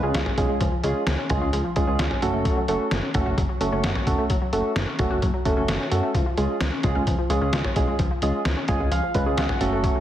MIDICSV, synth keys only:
0, 0, Header, 1, 2, 480
1, 0, Start_track
1, 0, Tempo, 461538
1, 631, Time_signature, 4, 2, 24, 8
1, 10402, End_track
2, 0, Start_track
2, 0, Title_t, "Synth keys"
2, 0, Program_c, 0, 88
2, 32, Note_on_c, 0, 56, 72
2, 32, Note_on_c, 0, 65, 66
2, 32, Note_on_c, 0, 68, 78
2, 33, Note_on_c, 0, 61, 63
2, 227, Note_off_c, 0, 56, 0
2, 227, Note_off_c, 0, 61, 0
2, 227, Note_off_c, 0, 65, 0
2, 227, Note_off_c, 0, 68, 0
2, 392, Note_on_c, 0, 56, 79
2, 392, Note_on_c, 0, 68, 92
2, 393, Note_on_c, 0, 61, 77
2, 393, Note_on_c, 0, 65, 75
2, 586, Note_off_c, 0, 56, 0
2, 586, Note_off_c, 0, 68, 0
2, 587, Note_off_c, 0, 61, 0
2, 587, Note_off_c, 0, 65, 0
2, 873, Note_on_c, 0, 56, 80
2, 873, Note_on_c, 0, 65, 71
2, 874, Note_on_c, 0, 61, 75
2, 874, Note_on_c, 0, 68, 89
2, 1067, Note_off_c, 0, 56, 0
2, 1067, Note_off_c, 0, 61, 0
2, 1067, Note_off_c, 0, 65, 0
2, 1068, Note_off_c, 0, 68, 0
2, 1353, Note_on_c, 0, 61, 76
2, 1353, Note_on_c, 0, 65, 74
2, 1353, Note_on_c, 0, 68, 92
2, 1354, Note_on_c, 0, 56, 82
2, 1547, Note_off_c, 0, 61, 0
2, 1547, Note_off_c, 0, 65, 0
2, 1547, Note_off_c, 0, 68, 0
2, 1548, Note_off_c, 0, 56, 0
2, 1832, Note_on_c, 0, 56, 80
2, 1832, Note_on_c, 0, 61, 75
2, 1832, Note_on_c, 0, 68, 90
2, 1833, Note_on_c, 0, 65, 75
2, 1929, Note_off_c, 0, 56, 0
2, 1929, Note_off_c, 0, 61, 0
2, 1929, Note_off_c, 0, 68, 0
2, 1930, Note_off_c, 0, 65, 0
2, 1951, Note_on_c, 0, 65, 66
2, 1952, Note_on_c, 0, 56, 73
2, 1952, Note_on_c, 0, 61, 66
2, 1952, Note_on_c, 0, 68, 79
2, 2146, Note_off_c, 0, 61, 0
2, 2146, Note_off_c, 0, 65, 0
2, 2147, Note_off_c, 0, 56, 0
2, 2147, Note_off_c, 0, 68, 0
2, 2311, Note_on_c, 0, 57, 84
2, 2312, Note_on_c, 0, 61, 81
2, 2312, Note_on_c, 0, 66, 79
2, 2312, Note_on_c, 0, 69, 96
2, 2701, Note_off_c, 0, 57, 0
2, 2702, Note_off_c, 0, 61, 0
2, 2702, Note_off_c, 0, 66, 0
2, 2702, Note_off_c, 0, 69, 0
2, 2795, Note_on_c, 0, 57, 78
2, 2795, Note_on_c, 0, 61, 74
2, 2795, Note_on_c, 0, 66, 74
2, 2795, Note_on_c, 0, 69, 91
2, 2988, Note_off_c, 0, 57, 0
2, 2988, Note_off_c, 0, 61, 0
2, 2988, Note_off_c, 0, 66, 0
2, 2988, Note_off_c, 0, 69, 0
2, 3273, Note_on_c, 0, 61, 77
2, 3273, Note_on_c, 0, 66, 77
2, 3273, Note_on_c, 0, 69, 90
2, 3274, Note_on_c, 0, 57, 81
2, 3467, Note_off_c, 0, 57, 0
2, 3467, Note_off_c, 0, 61, 0
2, 3467, Note_off_c, 0, 66, 0
2, 3467, Note_off_c, 0, 69, 0
2, 3752, Note_on_c, 0, 66, 71
2, 3753, Note_on_c, 0, 57, 83
2, 3753, Note_on_c, 0, 61, 74
2, 3753, Note_on_c, 0, 69, 87
2, 3849, Note_off_c, 0, 57, 0
2, 3849, Note_off_c, 0, 61, 0
2, 3849, Note_off_c, 0, 66, 0
2, 3849, Note_off_c, 0, 69, 0
2, 3871, Note_on_c, 0, 61, 66
2, 3871, Note_on_c, 0, 66, 67
2, 3871, Note_on_c, 0, 69, 81
2, 3872, Note_on_c, 0, 57, 74
2, 4066, Note_off_c, 0, 57, 0
2, 4066, Note_off_c, 0, 61, 0
2, 4066, Note_off_c, 0, 66, 0
2, 4066, Note_off_c, 0, 69, 0
2, 4231, Note_on_c, 0, 57, 80
2, 4231, Note_on_c, 0, 61, 77
2, 4231, Note_on_c, 0, 66, 73
2, 4231, Note_on_c, 0, 69, 92
2, 4426, Note_off_c, 0, 57, 0
2, 4426, Note_off_c, 0, 61, 0
2, 4426, Note_off_c, 0, 66, 0
2, 4426, Note_off_c, 0, 69, 0
2, 4710, Note_on_c, 0, 57, 80
2, 4710, Note_on_c, 0, 61, 70
2, 4710, Note_on_c, 0, 66, 73
2, 4710, Note_on_c, 0, 69, 86
2, 4905, Note_off_c, 0, 57, 0
2, 4906, Note_off_c, 0, 61, 0
2, 4906, Note_off_c, 0, 66, 0
2, 4906, Note_off_c, 0, 69, 0
2, 5190, Note_on_c, 0, 61, 72
2, 5190, Note_on_c, 0, 66, 77
2, 5191, Note_on_c, 0, 57, 81
2, 5191, Note_on_c, 0, 69, 91
2, 5386, Note_off_c, 0, 57, 0
2, 5386, Note_off_c, 0, 61, 0
2, 5386, Note_off_c, 0, 66, 0
2, 5386, Note_off_c, 0, 69, 0
2, 5670, Note_on_c, 0, 61, 74
2, 5671, Note_on_c, 0, 57, 80
2, 5671, Note_on_c, 0, 66, 72
2, 5672, Note_on_c, 0, 69, 88
2, 5768, Note_off_c, 0, 61, 0
2, 5769, Note_off_c, 0, 57, 0
2, 5769, Note_off_c, 0, 66, 0
2, 5769, Note_off_c, 0, 69, 0
2, 5789, Note_on_c, 0, 57, 71
2, 5790, Note_on_c, 0, 61, 65
2, 5790, Note_on_c, 0, 66, 67
2, 5790, Note_on_c, 0, 69, 79
2, 5985, Note_off_c, 0, 57, 0
2, 5985, Note_off_c, 0, 66, 0
2, 5986, Note_off_c, 0, 61, 0
2, 5986, Note_off_c, 0, 69, 0
2, 6150, Note_on_c, 0, 57, 80
2, 6150, Note_on_c, 0, 69, 90
2, 6151, Note_on_c, 0, 61, 74
2, 6151, Note_on_c, 0, 66, 74
2, 6345, Note_off_c, 0, 69, 0
2, 6346, Note_off_c, 0, 57, 0
2, 6346, Note_off_c, 0, 61, 0
2, 6346, Note_off_c, 0, 66, 0
2, 6630, Note_on_c, 0, 56, 80
2, 6630, Note_on_c, 0, 65, 73
2, 6630, Note_on_c, 0, 68, 84
2, 6631, Note_on_c, 0, 61, 71
2, 6826, Note_off_c, 0, 56, 0
2, 6826, Note_off_c, 0, 61, 0
2, 6826, Note_off_c, 0, 65, 0
2, 6826, Note_off_c, 0, 68, 0
2, 7110, Note_on_c, 0, 56, 82
2, 7110, Note_on_c, 0, 61, 74
2, 7110, Note_on_c, 0, 65, 76
2, 7111, Note_on_c, 0, 68, 92
2, 7305, Note_off_c, 0, 61, 0
2, 7306, Note_off_c, 0, 56, 0
2, 7306, Note_off_c, 0, 65, 0
2, 7306, Note_off_c, 0, 68, 0
2, 7591, Note_on_c, 0, 61, 72
2, 7591, Note_on_c, 0, 68, 88
2, 7592, Note_on_c, 0, 56, 79
2, 7592, Note_on_c, 0, 65, 75
2, 7689, Note_off_c, 0, 56, 0
2, 7689, Note_off_c, 0, 61, 0
2, 7689, Note_off_c, 0, 65, 0
2, 7689, Note_off_c, 0, 68, 0
2, 7713, Note_on_c, 0, 56, 72
2, 7714, Note_on_c, 0, 61, 66
2, 7714, Note_on_c, 0, 65, 64
2, 7714, Note_on_c, 0, 68, 81
2, 7907, Note_off_c, 0, 56, 0
2, 7908, Note_off_c, 0, 61, 0
2, 7908, Note_off_c, 0, 65, 0
2, 7908, Note_off_c, 0, 68, 0
2, 8073, Note_on_c, 0, 56, 84
2, 8073, Note_on_c, 0, 61, 74
2, 8073, Note_on_c, 0, 65, 76
2, 8073, Note_on_c, 0, 68, 90
2, 8267, Note_off_c, 0, 56, 0
2, 8267, Note_off_c, 0, 61, 0
2, 8267, Note_off_c, 0, 65, 0
2, 8267, Note_off_c, 0, 68, 0
2, 8553, Note_on_c, 0, 56, 83
2, 8553, Note_on_c, 0, 61, 72
2, 8553, Note_on_c, 0, 65, 74
2, 8553, Note_on_c, 0, 68, 88
2, 8747, Note_off_c, 0, 56, 0
2, 8747, Note_off_c, 0, 61, 0
2, 8747, Note_off_c, 0, 65, 0
2, 8747, Note_off_c, 0, 68, 0
2, 9032, Note_on_c, 0, 61, 77
2, 9032, Note_on_c, 0, 65, 74
2, 9032, Note_on_c, 0, 68, 93
2, 9032, Note_on_c, 0, 80, 71
2, 9033, Note_on_c, 0, 56, 84
2, 9226, Note_off_c, 0, 61, 0
2, 9226, Note_off_c, 0, 68, 0
2, 9227, Note_off_c, 0, 56, 0
2, 9227, Note_off_c, 0, 65, 0
2, 9255, Note_off_c, 0, 80, 0
2, 9273, Note_on_c, 0, 77, 72
2, 9513, Note_on_c, 0, 65, 77
2, 9513, Note_on_c, 0, 71, 90
2, 9514, Note_on_c, 0, 56, 82
2, 9514, Note_on_c, 0, 61, 74
2, 9610, Note_off_c, 0, 56, 0
2, 9610, Note_off_c, 0, 61, 0
2, 9610, Note_off_c, 0, 65, 0
2, 9610, Note_off_c, 0, 71, 0
2, 9633, Note_on_c, 0, 56, 73
2, 9633, Note_on_c, 0, 68, 81
2, 9634, Note_on_c, 0, 61, 67
2, 9634, Note_on_c, 0, 65, 66
2, 9718, Note_off_c, 0, 77, 0
2, 9754, Note_on_c, 0, 78, 72
2, 9827, Note_off_c, 0, 56, 0
2, 9827, Note_off_c, 0, 61, 0
2, 9827, Note_off_c, 0, 65, 0
2, 9827, Note_off_c, 0, 68, 0
2, 9991, Note_on_c, 0, 57, 88
2, 9991, Note_on_c, 0, 61, 83
2, 9991, Note_on_c, 0, 66, 79
2, 9991, Note_on_c, 0, 69, 96
2, 10199, Note_off_c, 0, 78, 0
2, 10381, Note_off_c, 0, 57, 0
2, 10381, Note_off_c, 0, 61, 0
2, 10381, Note_off_c, 0, 66, 0
2, 10381, Note_off_c, 0, 69, 0
2, 10402, End_track
0, 0, End_of_file